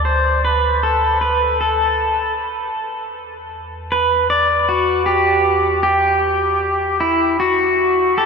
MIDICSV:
0, 0, Header, 1, 3, 480
1, 0, Start_track
1, 0, Tempo, 779221
1, 1692, Time_signature, 4, 2, 24, 8
1, 5086, End_track
2, 0, Start_track
2, 0, Title_t, "Pedal steel guitar"
2, 0, Program_c, 0, 26
2, 31, Note_on_c, 0, 72, 74
2, 268, Note_off_c, 0, 72, 0
2, 275, Note_on_c, 0, 71, 87
2, 510, Note_off_c, 0, 71, 0
2, 513, Note_on_c, 0, 69, 79
2, 744, Note_off_c, 0, 69, 0
2, 747, Note_on_c, 0, 71, 85
2, 986, Note_off_c, 0, 71, 0
2, 990, Note_on_c, 0, 69, 83
2, 1436, Note_off_c, 0, 69, 0
2, 2414, Note_on_c, 0, 71, 79
2, 2646, Note_off_c, 0, 71, 0
2, 2648, Note_on_c, 0, 74, 100
2, 2887, Note_on_c, 0, 66, 82
2, 2897, Note_off_c, 0, 74, 0
2, 3115, Note_off_c, 0, 66, 0
2, 3117, Note_on_c, 0, 67, 83
2, 3585, Note_off_c, 0, 67, 0
2, 3592, Note_on_c, 0, 67, 91
2, 4312, Note_off_c, 0, 67, 0
2, 4315, Note_on_c, 0, 64, 71
2, 4554, Note_off_c, 0, 64, 0
2, 4557, Note_on_c, 0, 66, 85
2, 5035, Note_on_c, 0, 67, 57
2, 5038, Note_on_c, 0, 69, 81
2, 5059, Note_off_c, 0, 66, 0
2, 5086, Note_off_c, 0, 67, 0
2, 5086, Note_off_c, 0, 69, 0
2, 5086, End_track
3, 0, Start_track
3, 0, Title_t, "Analog synth bass"
3, 0, Program_c, 1, 38
3, 0, Note_on_c, 1, 38, 76
3, 1667, Note_off_c, 1, 38, 0
3, 1692, Note_on_c, 1, 40, 75
3, 5086, Note_off_c, 1, 40, 0
3, 5086, End_track
0, 0, End_of_file